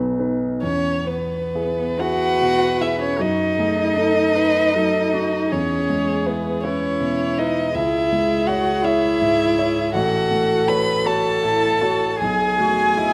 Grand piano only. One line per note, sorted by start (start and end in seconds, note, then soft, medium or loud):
0.00 0.65 B1 medium
0.00 0.65 B2 medium
0.00 0.19 B3 medium
0.00 0.20 D#4 soft
0.00 0.20 B4 medium
0.19 0.59 B3 soft
0.19 0.59 D#4 soft
0.19 0.59 B4 medium
0.63 3.16 E2 medium
1.07 1.82 B3 soft
1.55 1.96 E4 soft
1.55 1.96 G#4 soft
2.00 2.38 E4 soft
2.00 2.38 G#4 soft
2.42 3.05 B2 soft
2.81 3.16 E4 soft
2.81 3.16 G#4 soft
3.19 5.48 F#2 medium
3.59 4.20 A3 soft
3.97 4.32 D#4 soft
3.97 4.32 A4 soft
4.36 4.71 D#4 soft
4.36 4.71 A4 soft
4.76 5.37 F#3 soft
5.15 5.49 D#4 soft
5.15 5.49 A4 soft
5.52 7.71 E2 medium
5.90 6.49 G#3 soft
6.26 6.60 E4 soft
6.26 6.60 B4 soft
6.64 6.97 E4 soft
6.64 6.98 B4 soft
7.01 7.60 B2 soft
7.38 7.71 E4 soft
7.38 7.72 B4 soft
7.75 9.91 C#2 medium
8.12 8.69 G#3 soft
8.49 8.81 E4 soft
8.49 8.81 C#5 medium
8.85 9.17 E4 medium
8.85 9.17 C#5 medium
9.21 9.81 G#2 soft
9.58 9.92 E4 soft
9.58 9.92 C#5 medium
9.94 12.16 A1 medium
10.31 10.91 A3 soft
10.69 11.02 F#4 soft
10.69 11.03 C#5 soft
11.06 11.40 F#4 soft
11.06 11.40 C#5 soft
11.44 12.05 A2 soft
11.82 12.17 F#4 soft
11.82 12.17 C#5 soft
12.21 13.13 B1 medium
12.60 13.13 A3 soft
12.98 13.13 F#4 soft
12.98 13.13 D#5 medium